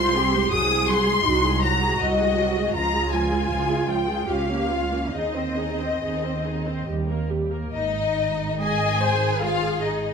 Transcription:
0.00 0.43 C2 medium
0.00 0.15 G#3 medium
0.00 0.16 F4 medium
0.00 0.15 C5 medium
0.00 0.48 C6 loud
0.15 0.33 C4 medium
0.15 0.51 G4 medium
0.15 0.33 G#4 medium
0.33 0.52 G#3 medium
0.33 0.52 C5 medium
0.52 1.17 C2 medium
0.52 0.69 F#3 medium
0.52 0.69 F#4 medium
0.52 1.25 G#4 medium
0.52 0.88 D#6 medium
0.52 0.89 D#6 loud
0.69 0.88 G#3 medium
0.69 0.88 G#4 medium
0.88 1.07 F#3 medium
0.88 1.07 F#4 medium
0.88 1.62 C6 medium
0.88 1.63 C6 loud
1.06 1.25 G#3 medium
1.06 1.25 G#4 medium
1.25 1.91 C2 medium
1.25 1.42 F#3 medium
1.25 1.62 D#4 medium
1.25 1.43 F#4 medium
1.43 1.62 G#3 medium
1.43 1.62 G#4 medium
1.62 1.81 F#3 medium
1.62 1.81 F#4 medium
1.62 2.75 F#4 medium
1.62 1.99 A#5 medium
1.62 2.00 A#5 medium
1.81 2.01 G#3 medium
1.81 2.00 G#4 medium
1.99 2.67 C2 medium
1.99 2.18 F#3 medium
1.99 2.18 F#4 medium
1.99 2.75 D#5 medium
2.19 2.38 G#3 medium
2.19 2.38 G#4 medium
2.38 2.57 F#3 medium
2.38 2.57 F#4 medium
2.58 2.76 G#3 medium
2.58 2.76 G#4 medium
2.74 3.42 C#2 medium
2.74 2.93 F3 medium
2.74 4.29 F4 medium
2.74 2.93 F4 medium
2.74 3.11 A#5 medium
2.94 3.13 G#3 medium
2.94 3.12 G#4 medium
3.13 3.32 F3 medium
3.13 3.31 F4 medium
3.13 3.89 G#5 medium
3.31 3.50 G#3 medium
3.31 3.50 G#4 soft
3.50 4.20 C#2 medium
3.50 3.68 F3 medium
3.50 3.68 F4 medium
3.69 3.89 G#3 soft
3.69 3.89 G#4 soft
3.88 4.09 F3 soft
3.88 4.09 F4 medium
3.88 4.29 G5 medium
4.08 4.29 G#3 soft
4.08 4.29 G#4 soft
4.28 5.03 C#2 medium
4.28 4.48 C#4 soft
4.28 4.48 F4 soft
4.28 4.69 G4 medium
4.28 5.12 F5 medium
4.28 5.14 F5 medium
4.50 4.71 A#3 soft
4.50 4.71 C#4 soft
4.70 4.91 C#4 soft
4.70 5.14 F4 medium
4.70 4.92 F4 soft
4.92 5.14 A#3 soft
4.92 5.14 C#4 soft
5.13 5.91 D#2 medium
5.13 7.31 C4 soft
5.13 5.34 D#4 soft
5.13 5.34 G#4 soft
5.13 6.88 D#5 medium
5.13 6.86 D#5 medium
5.36 5.58 C4 soft
5.36 5.58 C5 soft
5.58 5.80 D#4 soft
5.58 5.80 G#4 soft
5.81 6.03 C4 soft
5.81 6.02 C5 soft
6.02 6.79 D#2 medium
6.02 6.23 D#4 soft
6.02 6.23 G#4 soft
6.25 6.46 C4 soft
6.25 6.46 C5 soft
6.46 6.68 D#4 soft
6.46 6.68 G#4 soft
6.67 6.88 C4 soft
6.67 6.88 C5 soft
6.88 7.64 D#2 medium
6.88 7.08 G3 soft
6.88 7.08 G4 soft
7.10 7.31 A#3 soft
7.10 7.31 A#4 soft
7.30 7.52 G3 soft
7.30 7.52 G4 soft
7.52 7.73 A#3 soft
7.52 7.74 A#4 soft
7.73 10.13 G#1 medium
7.73 10.13 G#2 medium
7.73 8.57 D#4 medium
7.73 8.57 D#5 medium
8.61 9.42 G#4 medium
8.61 8.99 D#5 medium
8.61 9.42 G#5 medium
9.01 9.41 C5 medium
9.41 9.82 F4 medium
9.41 10.13 G#4 medium
9.41 9.81 F5 loud
9.82 10.13 D#4 medium
9.82 10.13 D#5 medium

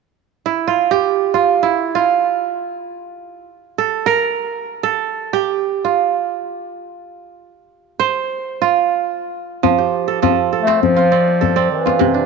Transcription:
0.46 0.74 E4 medium
0.68 1.34 F4 medium
0.91 2.32 G4 medium
1.34 1.69 F4 medium
1.63 2.01 E4 medium
1.95 3.46 F4 medium
3.78 4.12 A4 medium
4.06 4.89 A#4 medium
4.83 6.15 A4 medium
5.33 6.74 G4 medium
5.85 7.50 F4 medium
8.00 9.18 C5 medium
8.62 10.13 F4 medium
9.63 10.21 F3 medium
9.63 djembe bass medium
9.78 11.20 G4 medium
9.78 djembe slap soft
10.08 10.22 A4 medium
10.22 12.05 F3 medium
10.22 10.52 A4 medium
10.22 djembe tone medium
10.22 djembe bass medium
10.53 11.41 A4 medium
10.62 10.81 A3 medium
10.67 11.11 C4 medium
10.67 djembe slap medium
10.82 11.67 F3 loud
10.82 djembe bass medium
10.96 11.85 F4 medium
10.96 djembe tone medium
11.12 11.56 C4 medium
11.12 11.56 D5 medium
11.28 djembe slap soft
11.41 12.26 A4 medium
11.41 djembe slap soft
11.41 djembe bass medium
11.56 12.26 C4 medium
11.56 12.26 D5 medium
11.71 12.26 E3 medium
11.86 12.26 F4 medium
11.86 djembe slap medium
11.86 djembe tone medium
11.99 12.26 C3 medium
11.99 djembe bass medium
12.14 12.26 D4 medium
12.14 djembe slap soft

